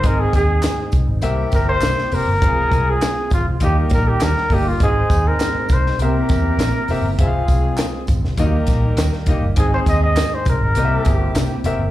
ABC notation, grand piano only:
X:1
M:4/4
L:1/16
Q:1/4=101
K:Ab
V:1 name="Grand piano"
[CEAe]4 z4 [CGB=e]4 z2 [CGBc] z | [CFAf]4 z4 [B,EFGe]4 z2 [B,EGe] z | [CEAe]4 z4 [CGB=e]4 z2 [CGBe] z | [CFA_f=f]4 z4 [B,E_G=Ge]4 z2 [B,EGe] z |
[CEAe]4 z4 [CGBe=e]4 z2 [CGBe] z |]
V:2 name="Grand piano" clef=bass
A,,6 z2 C,6 z2 | z8 E,6 z2 | A,,6 z2 C,6 z2 | z8 E,6 z2 |
A,,6 z2 C,6 z2 |]